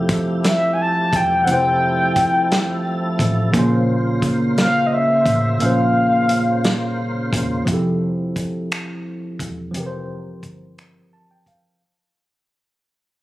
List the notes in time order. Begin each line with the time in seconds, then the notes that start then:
Already playing: F1 F3 A3 C4 E4 G4 A4
0.09 kick, closed hi-hat
0.44 E5, snare, closed hi-hat
0.73 G#5
0.81 A5
1.13 E1 G5, kick, closed hi-hat
1.43 F3 C4 F#5, closed hi-hat
1.48 F1 E4 G4 A4 G5
1.53 C5
2.16 kick, closed hi-hat
2.51 snare, closed hi-hat
3.19 A1, kick, closed hi-hat
3.51 A#1 C#3 A#3 F4 C5, kick, closed hi-hat
3.55 A#3 C#4 F4
3.59 C5
4.22 kick, closed hi-hat
4.58 F5, snare, closed hi-hat
4.86 D#5
4.93 E5
5.26 A1, kick, closed hi-hat
5.58 A#1 A#2 A#3 F5, closed hi-hat
5.62 C#4 F4
5.66 C5
6.29 closed hi-hat
6.64 snare, closed hi-hat
7.33 E1, kick, closed hi-hat
7.65 F1 F3 C4, kick, closed hi-hat
7.69 E4 G4
7.73 A4
8.36 kick, closed hi-hat
8.71 finger snap, closed hi-hat
9.39 E1, kick, closed hi-hat
9.71 F1 F3 C4, closed hi-hat
9.75 E3 G4
9.80 A#4
9.86 C5
10.43 G1, kick, closed hi-hat
10.78 finger snap, closed hi-hat
11.13 A5
11.31 G5
11.46 E1 F5, kick, closed hi-hat